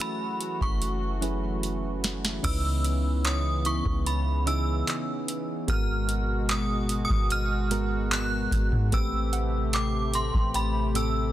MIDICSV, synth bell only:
0, 0, Header, 1, 2, 480
1, 0, Start_track
1, 0, Key_signature, 4, "minor"
1, 0, Tempo, 810811
1, 1444, Time_signature, 4, 2, 24, 8
1, 6704, End_track
2, 0, Start_track
2, 0, Title_t, "Synth bell"
2, 0, Program_c, 0, 98
2, 8, Note_on_c, 0, 83, 90
2, 368, Note_on_c, 0, 85, 78
2, 377, Note_off_c, 0, 83, 0
2, 1182, Note_off_c, 0, 85, 0
2, 1447, Note_on_c, 0, 88, 106
2, 1902, Note_off_c, 0, 88, 0
2, 1930, Note_on_c, 0, 87, 100
2, 2150, Note_off_c, 0, 87, 0
2, 2168, Note_on_c, 0, 85, 92
2, 2251, Note_off_c, 0, 85, 0
2, 2408, Note_on_c, 0, 83, 81
2, 2648, Note_on_c, 0, 88, 92
2, 2653, Note_off_c, 0, 83, 0
2, 3102, Note_off_c, 0, 88, 0
2, 3372, Note_on_c, 0, 89, 96
2, 3854, Note_on_c, 0, 87, 93
2, 3862, Note_off_c, 0, 89, 0
2, 4073, Note_off_c, 0, 87, 0
2, 4172, Note_on_c, 0, 87, 92
2, 4332, Note_on_c, 0, 89, 102
2, 4333, Note_off_c, 0, 87, 0
2, 4811, Note_on_c, 0, 90, 102
2, 4822, Note_off_c, 0, 89, 0
2, 5144, Note_off_c, 0, 90, 0
2, 5291, Note_on_c, 0, 88, 99
2, 5769, Note_on_c, 0, 86, 96
2, 5782, Note_off_c, 0, 88, 0
2, 6010, Note_on_c, 0, 84, 90
2, 6013, Note_off_c, 0, 86, 0
2, 6248, Note_on_c, 0, 83, 87
2, 6254, Note_off_c, 0, 84, 0
2, 6331, Note_off_c, 0, 83, 0
2, 6489, Note_on_c, 0, 88, 85
2, 6704, Note_off_c, 0, 88, 0
2, 6704, End_track
0, 0, End_of_file